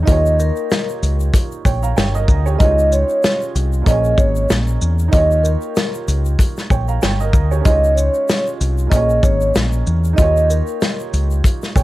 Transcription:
0.03 A#3 D#4 D#5
0.07 D#2 F4 G4, kick, closed hi-hat, shaker
0.12 C#5
0.26 shaker
0.40 A#4, shaker
0.56 shaker
0.71 snare, closed hi-hat, shaker
0.89 shaker
1.03 C#2, closed hi-hat, shaker
1.20 shaker
1.34 kick, closed hi-hat, shaker
1.52 shaker
1.65 A#1 C#5 G5, kick, closed hi-hat, shaker
1.83 F5 A#5, shaker
1.97 G1 C#5 G5, snare, closed hi-hat, shaker
2.15 A#4 D#5, shaker
2.28 D2, kick, shaker
2.46 G4 C#5, shaker
2.56 G#3 C#4 D#5
2.60 C#2 D#4 F4, kick, closed hi-hat, shaker
2.65 C#5
2.79 shaker
2.92 C#5, shaker
3.09 shaker
3.23 snare, closed hi-hat, shaker
3.42 shaker
3.55 C2, closed hi-hat, shaker
3.73 shaker
3.82 A#2 A#3
3.86 A#1 C#4 G#4 D#5, kick, closed hi-hat, shaker
3.91 C#5
4.04 shaker
4.17 G#1 C#5, kick, shaker
4.36 shaker
4.49 A#1, snare, closed hi-hat, shaker
4.67 shaker
4.82 E2, shaker
4.99 shaker
5.08 A#3 D#4 D#5
5.13 D#2 F4 G4, kick, closed hi-hat, shaker
5.17 C#5
5.31 shaker
5.43 A#4, shaker
5.61 shaker
5.76 snare, closed hi-hat, shaker
5.94 shaker
6.08 C#2, closed hi-hat, shaker
6.25 shaker
6.39 kick, closed hi-hat, shaker
6.57 snare, shaker
6.70 A#1 C#5 G5, kick, shaker
6.88 F5 A#5, shaker
7.02 G1 C#5 G5, snare, closed hi-hat, shaker
7.20 A#4 D#5, shaker
7.33 D2, kick, shaker
7.51 G4 C#5, shaker
7.61 G#3 C#4
7.65 C#2 D#4 F4 D#5, kick, closed hi-hat, shaker
7.70 C#5
7.84 shaker
7.95 C#5, shaker
8.14 shaker
8.28 snare, closed hi-hat, shaker
8.47 shaker
8.61 C2, closed hi-hat, shaker
8.78 shaker
8.87 A#2 A#3 D#5
8.91 A#1 C#4 G#4, kick, closed hi-hat, shaker
8.96 C#5
9.10 shaker
9.23 G#1 C#5, kick, shaker
9.41 shaker
9.55 A#1, snare, closed hi-hat, shaker
9.73 shaker
9.87 E2, shaker
10.04 shaker
10.13 A#3 D#4 D#5
10.18 D#2 F4 G4, kick, closed hi-hat, shaker
10.22 C#5
10.37 shaker
10.50 A#4, shaker
10.67 shaker
10.81 snare, closed hi-hat, shaker
11.00 shaker
11.13 C#2, closed hi-hat, shaker
11.31 shaker
11.44 kick, closed hi-hat, shaker
11.62 snare, shaker
11.76 A#1 C#5 G5, kick, closed hi-hat, shaker

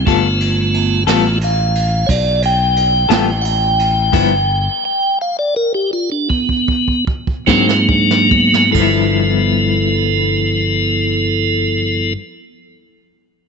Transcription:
0.06 G1 G3 A3 B3 F4 A4, kick, ride
0.40 ride
0.74 ride
1.07 A1 G3 A3 B3 F4 A4, snare, ride
1.41 F5, ride
1.75 ride
2.07 B1 C#5, kick, ride
2.11 D5
2.42 G5, ride
2.76 ride
3.09 A1 G3 B3 F4 A4 G5, snare, ride
3.42 F#5 G5, ride
3.79 ride
4.12 G1 G2 F3 B3 E4, kick, crash, ride
4.85 G5
5.21 F5
5.39 D5
5.56 A#4
5.74 G4
5.93 F4
6.12 D4
6.30 B3, kick
6.49 kick
6.68 kick
6.88 kick
7.07 kick
7.27 kick
7.47 G#2 F#3 A#3 C4 D4, kick, snare
7.68 C4, snare
7.89 D4, kick
8.11 snare
8.31 B3, kick
8.54 snare
8.71 G1 G2 F3 B3 E4 A4, kick, crash
8.79 B3 E4

